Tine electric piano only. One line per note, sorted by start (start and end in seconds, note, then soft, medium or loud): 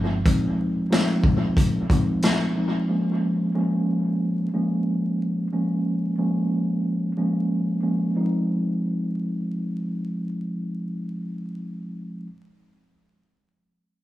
0.00 0.19 F3 medium
0.00 0.19 G#3 medium
0.00 0.19 C4 medium
0.00 0.19 D#4 medium
0.26 0.88 F3 medium
0.26 0.88 G#3 medium
0.26 0.88 C4 medium
0.26 0.88 D#4 medium
0.90 1.83 F3 medium
0.90 1.84 G#3 medium
0.90 1.84 C4 medium
0.90 1.84 D#4 loud
1.91 2.52 F3 medium
1.91 2.53 G#3 medium
1.91 2.53 C4 medium
1.91 2.53 D#4 medium
2.57 2.87 F3 medium
2.57 2.87 G#3 medium
2.57 2.88 C4 medium
2.57 2.88 D#4 medium
2.89 3.51 F3 loud
2.89 3.51 G#3 medium
2.89 3.51 A#3 medium
2.89 3.51 C#4 loud
3.54 4.47 F3 medium
3.54 4.48 G#3 medium
3.54 4.48 A#3 medium
3.54 4.48 C#4 loud
4.54 5.47 F3 medium
4.54 5.47 G#3 medium
4.54 5.47 A#3 medium
4.54 5.47 C#4 medium
5.53 6.14 F3 medium
5.53 6.15 G#3 medium
5.53 6.15 A#3 medium
5.53 6.15 C#4 loud
6.18 7.11 F3 medium
6.18 7.11 G#3 medium
6.18 7.11 A#3 medium
6.18 7.11 C#4 loud
7.17 7.79 F3 medium
7.17 7.79 G#3 medium
7.17 7.80 A#3 medium
7.17 7.80 C#4 loud
7.82 8.14 F3 medium
7.82 8.14 G#3 medium
7.82 8.14 A#3 medium
7.82 8.14 C#4 medium
8.16 12.26 F3 medium
8.16 12.26 G#3 medium
8.16 12.26 C4 medium
8.16 12.27 D#4 medium